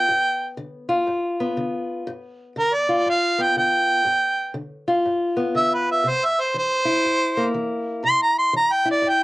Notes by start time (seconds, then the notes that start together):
Already playing: B3 F4 G5
0.09 G2
0.57 D3
0.89 F4
1.07 G2
1.40 B3
1.57 D3
2.07 G2
2.56 D3 A#4
2.74 D5
2.89 F4
3.06 G2 F5
3.38 B3 G5
3.56 D3 G5
4.05 G2
4.54 D3
4.88 F4
5.06 G2
5.37 B3
5.55 D3 E5
5.74 B4
5.92 E5
6.04 C3
6.09 C5
6.25 E5
6.41 C5
6.54 E3 C5
6.85 E4
7.05 G2
7.37 A#3
7.54 E3
8.04 C3 C6
8.22 A#5
8.39 C6
8.53 E3 A#5
8.73 G5
8.85 E4
8.91 D5
9.02 G2
9.09 G5